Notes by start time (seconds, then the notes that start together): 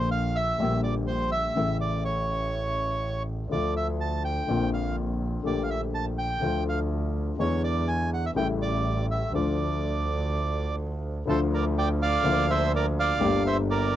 Already playing: A#1 A#2 D3 F3 A#3 F4
0.11 F5
0.35 E5
0.58 A#1 A#2 D3 G3 A#3
0.62 G4
0.84 D5
1.07 C5
1.32 E5
1.55 A1 A2 C#3 E3 A3
1.59 E4
1.81 D5
2.05 C#5
3.49 D2 D3 F3 A3 D5
3.54 F4
3.77 E5
4.01 A5
4.25 G5
4.47 A#1 A#2 D3 A#3 C4 F4
4.74 F5
5.43 A#1 A#2 D3 A3 A#3 G4 D5
5.63 F5
5.70 E5
5.94 A5
6.18 G5
6.41 D2 D3 F3 A3 F4
6.69 F5
7.38 E2 D3 E3 G#3 B3 E4 C#5
7.64 D5
7.88 G#5
8.14 F#5
8.26 E5
8.35 A1 A2 C#3 G3 A3 E4 G5
8.62 D5
9.11 E5
9.32 D2 D3 F3 A3 D5
9.36 F4
11.25 D2 D3 F3 A3 A4
11.29 F4 C5
11.54 A#4 D5
11.78 D5 G5
12.02 D5 F5
12.22 D2 D3 F3 A#3
12.27 F4
12.50 C5 E5
12.76 A#4 D5
12.99 D5 F5
13.19 G1 G2 D3 G3 A#3
13.23 G4
13.47 C5 E5
13.70 A#4 D5